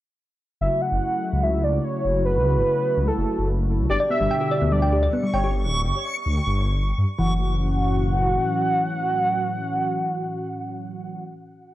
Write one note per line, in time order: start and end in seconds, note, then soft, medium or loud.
0.61 0.68 F#1 loud
0.61 3.86 C#3 medium
0.61 3.86 F#3 medium
0.61 3.86 A3 medium
0.61 3.86 E4 medium
0.61 3.86 F#4 medium
0.61 0.83 E5 loud
0.81 1.45 F#5 loud
0.92 0.99 F#1 medium
1.33 1.79 C#2 medium
1.43 1.65 E5 loud
1.64 1.86 D5 loud
1.84 2.25 C#5 medium
2.05 2.37 F#1 medium
2.25 3.09 B4 loud
2.36 2.58 C#2 medium
2.56 2.63 F#1 medium
2.97 3.11 C#2 medium
3.08 3.49 A4 medium
3.18 3.25 F#1 loud
3.38 3.81 F#1 medium
3.79 3.86 C#2 medium
3.90 3.97 G1 loud
3.90 5.52 B2 medium
3.90 5.52 D3 medium
3.90 5.52 G3 medium
3.90 5.52 D4 medium
3.90 5.52 G4 medium
3.90 3.96 G4 medium
3.90 3.99 D5 loud
3.90 7.19 C#6 medium
4.00 4.10 D5 loud
4.10 4.20 B3 medium
4.10 4.73 E5 loud
4.21 4.27 G1 medium
4.21 4.27 G3 medium
4.31 4.38 G5 loud
4.41 4.48 G4 medium
4.51 4.61 D5 loud
4.62 5.08 D2 medium
4.62 4.71 B3 medium
4.72 4.79 G3 medium
4.72 5.13 D5 loud
4.82 4.89 G5 loud
4.92 4.99 G4 medium
5.03 5.12 D5 loud
5.13 5.23 B3 medium
5.23 5.30 G3 medium
5.34 5.66 G1 medium
5.34 5.53 C#5 medium
5.34 5.40 G5 loud
5.44 5.51 G4 medium
5.64 5.86 D1 medium
5.85 5.92 G1 medium
6.26 6.40 D2 medium
6.47 6.92 G1 medium
6.98 7.05 G2 medium
7.18 8.38 F#1 medium
7.18 11.23 A2 medium
7.18 7.38 E3 medium
7.18 11.23 E3 medium
7.18 11.23 F#3 medium
7.18 11.23 C#4 medium
7.18 11.23 F#4 medium
7.18 11.23 F#5 medium